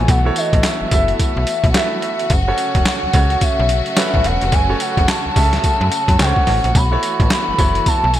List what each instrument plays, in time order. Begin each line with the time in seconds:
Already playing: string section E3 A3 B3 F#4, grand piano E4 F#4 A4 B4 C#5, soft synth lead G#5
0.08 fm bass B1, soft synth lead F#5, kick, closed hi-hat, tambourine
0.25 grand piano E4 F#4 A4 C#5
0.36 soft synth lead D#5, closed hi-hat, tambourine
0.53 fm bass A1, kick, closed hi-hat
0.63 soft synth lead E5, snare, clap, closed hi-hat, tambourine
0.81 fm bass F#1
0.91 fm bass F#1, grand piano E4 F#4 A4 E5, kick, closed hi-hat, tambourine
1.08 closed hi-hat
1.19 soft synth lead E5, kick, closed hi-hat, tambourine
1.37 fm bass B1
1.47 closed hi-hat, tambourine
1.64 fm bass B1, kick, closed hi-hat
1.70 soft synth lead F#5
1.74 grand piano E4 F#4 A4 E5, soft synth lead E5, snare, clap, closed hi-hat, tambourine
2.02 closed hi-hat
2.19 closed hi-hat
2.30 fm bass F#1, string section C#3 F#3 A3, soft synth lead F#5, kick, closed hi-hat, tambourine
2.48 grand piano C#4 F#4 A4 C#5
2.58 closed hi-hat, tambourine
2.75 fm bass E1, kick, closed hi-hat
2.85 soft synth lead F#5, snare, clap, closed hi-hat, tambourine
3.03 fm bass C#2
3.13 fm bass C#2, grand piano C#4 F#4 A4 C#5, kick, closed hi-hat, tambourine
3.30 closed hi-hat
3.41 fm bass B1, soft synth lead E5, kick, closed hi-hat, tambourine
3.59 fm bass B1
3.69 closed hi-hat, tambourine
3.86 closed hi-hat
3.97 grand piano C#4 F#4 A4 B4, snare, clap, closed hi-hat, tambourine
4.14 fm bass A1, kick
4.24 fm bass E1, soft synth lead F#5, closed hi-hat
4.41 fm bass F1, closed hi-hat
4.52 fm bass F#1, soft synth lead G#5, kick, closed hi-hat, tambourine
4.69 grand piano C#4 F#4 A4 C#5
4.80 soft synth lead F#5, closed hi-hat, tambourine
4.97 fm bass F#1, kick, closed hi-hat
5.08 soft synth lead A5, snare, clap, closed hi-hat, tambourine
5.26 fm bass C#2
5.36 fm bass C#2, grand piano C#4 F#4 G#4 E5, kick, open hi-hat, tambourine
5.43 grand piano A4
5.53 snare, closed hi-hat
5.64 kick, closed hi-hat, tambourine
5.81 fm bass F#2
5.92 closed hi-hat, tambourine
6.08 fm bass F#2, kick, closed hi-hat
6.19 fm bass C#2, grand piano C#4 F#4 A4 C5, soft synth lead F#5, snare, clap, closed hi-hat, tambourine
6.27 grand piano C#5
6.36 kick
6.47 fm bass A1, snare, open hi-hat
6.64 fm bass A#1, closed hi-hat
6.74 fm bass B1, string section E3 B3, soft synth lead B5, kick, closed hi-hat, tambourine
6.91 grand piano E4 F#4 A4 C#5
7.03 closed hi-hat, tambourine
7.20 fm bass A1, kick, closed hi-hat
7.30 soft synth lead B5, snare, clap, closed hi-hat, tambourine
7.49 fm bass F#1
7.58 fm bass F#1, grand piano E4 F#4 A4 C#5, kick, closed hi-hat, tambourine
7.75 closed hi-hat
7.86 fm bass B1, soft synth lead A5, kick, closed hi-hat, tambourine
8.04 fm bass B1
8.14 soft synth lead G#5, closed hi-hat, tambourine